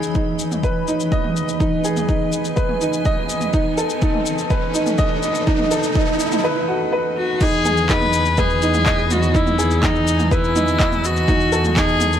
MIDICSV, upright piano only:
0, 0, Header, 1, 2, 480
1, 0, Start_track
1, 0, Key_signature, 4, "major"
1, 0, Tempo, 483871
1, 1593, Time_signature, 4, 2, 24, 8
1, 12098, End_track
2, 0, Start_track
2, 0, Title_t, "Upright piano"
2, 0, Program_c, 0, 0
2, 0, Control_c, 0, 64, 127
2, 0, Note_on_c, 0, 63, 87
2, 0, Note_on_c, 0, 68, 65
2, 152, Note_off_c, 0, 63, 0
2, 152, Note_on_c, 0, 63, 64
2, 381, Note_off_c, 0, 63, 0
2, 630, Note_on_c, 0, 71, 71
2, 859, Note_off_c, 0, 71, 0
2, 871, Note_on_c, 0, 63, 69
2, 1100, Note_off_c, 0, 63, 0
2, 1111, Note_on_c, 0, 75, 91
2, 1249, Note_off_c, 0, 75, 0
2, 1586, Note_on_c, 0, 63, 90
2, 1817, Note_off_c, 0, 63, 0
2, 1829, Note_off_c, 0, 68, 0
2, 1829, Note_on_c, 0, 68, 67
2, 1968, Note_off_c, 0, 68, 0
2, 2065, Note_on_c, 0, 63, 75
2, 2297, Note_off_c, 0, 63, 0
2, 2542, Note_on_c, 0, 71, 71
2, 2775, Note_off_c, 0, 71, 0
2, 2789, Note_on_c, 0, 63, 70
2, 3019, Note_off_c, 0, 63, 0
2, 3030, Note_on_c, 0, 75, 97
2, 3168, Note_off_c, 0, 75, 0
2, 3505, Note_on_c, 0, 63, 91
2, 3525, Control_c, 0, 64, 0
2, 3707, Control_c, 0, 64, 127
2, 3737, Note_off_c, 0, 63, 0
2, 3744, Note_on_c, 0, 69, 72
2, 3885, Note_off_c, 0, 69, 0
2, 3984, Note_on_c, 0, 63, 80
2, 4216, Note_off_c, 0, 63, 0
2, 4468, Note_on_c, 0, 71, 74
2, 4698, Note_off_c, 0, 71, 0
2, 4701, Note_on_c, 0, 63, 76
2, 4935, Note_off_c, 0, 63, 0
2, 4943, Note_on_c, 0, 75, 107
2, 5084, Note_off_c, 0, 75, 0
2, 5425, Note_on_c, 0, 63, 95
2, 5657, Note_off_c, 0, 63, 0
2, 5666, Note_on_c, 0, 69, 75
2, 5806, Note_off_c, 0, 69, 0
2, 5910, Note_on_c, 0, 63, 82
2, 6139, Note_off_c, 0, 63, 0
2, 6387, Note_on_c, 0, 71, 80
2, 6618, Note_off_c, 0, 71, 0
2, 6627, Note_on_c, 0, 66, 76
2, 6767, Note_off_c, 0, 66, 0
2, 6870, Note_on_c, 0, 71, 80
2, 7099, Note_off_c, 0, 71, 0
2, 7354, Note_on_c, 0, 63, 93
2, 7366, Control_c, 0, 64, 0
2, 7515, Control_c, 0, 64, 127
2, 7581, Note_off_c, 0, 63, 0
2, 7591, Note_on_c, 0, 68, 75
2, 7729, Note_off_c, 0, 68, 0
2, 7834, Note_on_c, 0, 63, 79
2, 8061, Note_off_c, 0, 63, 0
2, 8313, Note_on_c, 0, 71, 84
2, 8541, Note_off_c, 0, 71, 0
2, 8552, Note_on_c, 0, 63, 75
2, 8780, Note_off_c, 0, 63, 0
2, 8792, Note_on_c, 0, 75, 105
2, 8929, Note_off_c, 0, 75, 0
2, 9267, Note_on_c, 0, 63, 99
2, 9498, Note_off_c, 0, 63, 0
2, 9509, Note_on_c, 0, 68, 79
2, 9648, Note_off_c, 0, 68, 0
2, 9742, Note_on_c, 0, 63, 79
2, 9976, Note_off_c, 0, 63, 0
2, 10230, Note_on_c, 0, 71, 82
2, 10459, Note_off_c, 0, 71, 0
2, 10468, Note_on_c, 0, 63, 79
2, 10699, Note_off_c, 0, 63, 0
2, 10707, Note_on_c, 0, 75, 101
2, 10847, Note_off_c, 0, 75, 0
2, 11192, Note_on_c, 0, 63, 98
2, 11206, Control_c, 0, 64, 0
2, 11405, Control_c, 0, 64, 127
2, 11420, Note_off_c, 0, 63, 0
2, 11430, Note_on_c, 0, 69, 77
2, 11568, Note_off_c, 0, 69, 0
2, 11673, Note_on_c, 0, 63, 79
2, 11901, Note_off_c, 0, 63, 0
2, 12098, End_track
0, 0, End_of_file